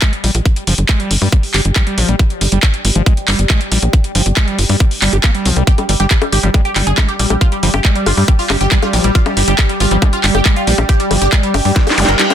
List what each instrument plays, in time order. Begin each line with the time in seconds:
Already playing: ambient pad G4 D5 G5
0.02 acid bass G#3, kick, clap, closed hi-hat
0.13 closed hi-hat
0.24 analog synth bass A#1, acid bass G3, open hi-hat
0.35 analog synth bass A#1, closed hi-hat
0.45 kick, closed hi-hat
0.56 closed hi-hat
0.67 analog synth bass G1, acid bass F3, open hi-hat
0.78 analog synth bass G1, closed hi-hat
0.89 acid bass G#3, kick, clap, closed hi-hat
1.00 acid bass G3, closed hi-hat
1.11 analog synth bass G1, open hi-hat
1.22 analog synth bass G2, acid bass G3, open hi-hat
1.32 acid bass G3, kick, closed hi-hat
1.43 open hi-hat
1.54 analog synth bass G1, acid bass G4, clap, open hi-hat
1.65 analog synth bass G1, closed hi-hat
1.76 acid bass G3, kick, clap, closed hi-hat
1.87 acid bass G3, closed hi-hat
1.98 analog synth bass A#1, acid bass F3, open hi-hat
2.09 analog synth bass A#1, acid bass G3, closed hi-hat
2.19 acid bass G3, kick, closed hi-hat
2.30 closed hi-hat
2.41 analog synth bass G1, open hi-hat
2.52 analog synth bass G1, acid bass G3, closed hi-hat
2.63 kick, clap, closed hi-hat
2.74 closed hi-hat
2.85 analog synth bass G#1, open hi-hat
2.95 analog synth bass G#1, acid bass F3, closed hi-hat
3.06 acid bass G#3, kick, closed hi-hat
3.17 closed hi-hat
3.28 analog synth bass G1, acid bass G3, clap, open hi-hat
3.39 analog synth bass G1, closed hi-hat
3.50 acid bass G#3, kick, clap, closed hi-hat
3.61 closed hi-hat
3.72 analog synth bass A#1, acid bass G3, open hi-hat
3.82 analog synth bass A#1, closed hi-hat
3.93 kick, closed hi-hat
4.04 closed hi-hat
4.15 analog synth bass G1, acid bass F3, open hi-hat
4.26 analog synth bass G1, closed hi-hat
4.37 acid bass G#3, kick, clap, closed hi-hat
4.48 acid bass G3, closed hi-hat
4.58 analog synth bass G1, open hi-hat
4.69 analog synth bass G2, acid bass G3, open hi-hat
4.80 acid bass G3, kick, closed hi-hat
4.91 open hi-hat
5.02 analog synth bass G1, acid bass G3, clap, open hi-hat
5.13 analog synth bass G1, acid bass G4, closed hi-hat
5.24 acid bass A#3, kick, clap, closed hi-hat
5.35 acid bass G3, closed hi-hat
5.45 analog synth bass C2, acid bass F3, open hi-hat
5.56 analog synth bass C2, acid bass G3, closed hi-hat
5.67 ambient pad G3 G4, acid bass G3, supersaw synth G4, kick, closed hi-hat
5.78 supersaw synth G3, closed hi-hat, high bongo
5.89 analog synth bass G1, supersaw synth G3, open hi-hat
6.00 analog synth bass G1, acid bass G3, supersaw synth G4, closed hi-hat
6.11 supersaw synth G3, kick, clap, closed hi-hat
6.22 supersaw synth G3, closed hi-hat, high bongo
6.32 analog synth bass G#1, supersaw synth G4, open hi-hat
6.43 analog synth bass G#1, acid bass F3, supersaw synth G3, closed hi-hat
6.54 supersaw synth G3, acid bass G#3, kick, closed hi-hat, high bongo
6.65 supersaw synth G4, closed hi-hat
6.76 analog synth bass G1, supersaw synth G3, acid bass G3, clap, open hi-hat
6.87 analog synth bass G1, supersaw synth G#4, closed hi-hat
6.98 supersaw synth G3, acid bass G#3, kick, clap, closed hi-hat, high bongo
7.09 supersaw synth G4, closed hi-hat
7.19 analog synth bass A#1, supersaw synth G3, acid bass G3, open hi-hat
7.30 analog synth bass A#1, supersaw synth G3, closed hi-hat, high bongo
7.41 supersaw synth F4, kick, closed hi-hat
7.52 supersaw synth G3, closed hi-hat
7.63 analog synth bass G1, acid bass F3, supersaw synth G3, open hi-hat
7.74 analog synth bass G1, supersaw synth G4, closed hi-hat, high bongo
7.85 supersaw synth G3, acid bass G#3, kick, clap, closed hi-hat
7.96 acid bass G3, supersaw synth G3, closed hi-hat
8.06 analog synth bass G1, supersaw synth F4, open hi-hat, high bongo
8.17 analog synth bass G2, acid bass G3, supersaw synth G3, open hi-hat
8.28 acid bass G3, supersaw synth G3, kick, closed hi-hat
8.39 supersaw synth F4, open hi-hat
8.50 analog synth bass G1, supersaw synth G3, acid bass G4, clap, open hi-hat, high bongo
8.61 analog synth bass G1, supersaw synth G4, closed hi-hat
8.72 acid bass G3, supersaw synth G3, kick, clap, closed hi-hat
8.82 acid bass G3, supersaw synth F4, closed hi-hat, high bongo
8.93 analog synth bass A#1, acid bass F3, supersaw synth G3, open hi-hat
9.04 analog synth bass A#1, acid bass G3, supersaw synth G3, closed hi-hat
9.15 acid bass G3, supersaw synth F4, kick, closed hi-hat
9.26 supersaw synth G3, closed hi-hat, high bongo
9.37 analog synth bass G1, supersaw synth G3, open hi-hat
9.48 analog synth bass G1, acid bass G3, supersaw synth G4, closed hi-hat
9.59 supersaw synth G3, kick, clap, closed hi-hat, high bongo
9.69 supersaw synth G3, closed hi-hat
9.80 analog synth bass G#1, supersaw synth F4, open hi-hat
9.91 analog synth bass G#1, acid bass F3, supersaw synth G3, closed hi-hat
10.02 supersaw synth G3, acid bass G#3, kick, closed hi-hat, high bongo
10.13 supersaw synth F4, closed hi-hat
10.24 analog synth bass G1, acid bass G3, supersaw synth G3, clap, open hi-hat
10.35 analog synth bass G1, supersaw synth G4, closed hi-hat, high bongo
10.46 supersaw synth G3, acid bass G#3, kick, clap, closed hi-hat
10.56 supersaw synth F4, closed hi-hat
10.67 analog synth bass A#1, acid bass G3, supersaw synth G3, open hi-hat
10.78 analog synth bass A#1, supersaw synth G3, closed hi-hat, high bongo
10.89 supersaw synth G4, kick, closed hi-hat
11.00 supersaw synth G3, closed hi-hat
11.11 analog synth bass G1, acid bass F3, supersaw synth G3, open hi-hat, high bongo
11.22 analog synth bass G1, supersaw synth G4, closed hi-hat
11.32 supersaw synth G3, acid bass G#3, kick, clap, closed hi-hat
11.43 supersaw synth G3, acid bass G3, closed hi-hat
11.54 analog synth bass G1, supersaw synth G4, open hi-hat, high bongo
11.65 analog synth bass G2, acid bass G3, supersaw synth G3, open hi-hat
11.76 supersaw synth G3, acid bass G3, kick, snare, closed hi-hat, reverse cymbal
11.87 supersaw synth G4, snare, open hi-hat, high bongo
11.98 analog synth bass G1, supersaw synth G3, acid bass G#3, open hi-hat, zap
12.05 analog synth bass G1, supersaw synth A#4, snare, closed hi-hat
12.19 supersaw synth G3, acid bass G4, snare, clap, closed hi-hat
12.30 acid bass G4, supersaw synth C5, closed hi-hat, high bongo